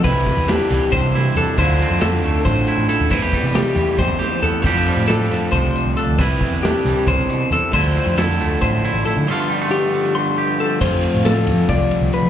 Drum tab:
CC |-------|-------|-------|x------|
RD |-------|-------|-------|-------|
HH |xxxxxxx|xxxxxxx|xxxxxxx|-xxxxxx|
SD |-ooo-o-|-oo-o--|--o-oo-|--oo---|
BD |oo--o--|o---o--|oo--o--|o---o--|

CC |-------|-------|-------|x------|
RD |-------|-------|-------|-xxxxxx|
HH |xxxxxxx|xxxxxxx|-------|-------|
SD |-ooo---|--o----|-------|--o-o--|
BD |oo--o--|o---o--|-------|o---o--|